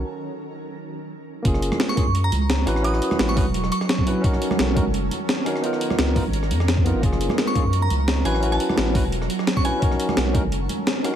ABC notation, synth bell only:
X:1
M:4/4
L:1/16
Q:"Swing 16ths" 1/4=172
K:F#
V:1 name="Synth bell"
z16 | z4 z c'2 z2 a4 z3 | d'2 z3 c'4- c' c'4 z2 | z16 |
z16 | z4 z c'2 z2 a4 z g2 | z =a2 z8 z2 c' g2 | z16 |]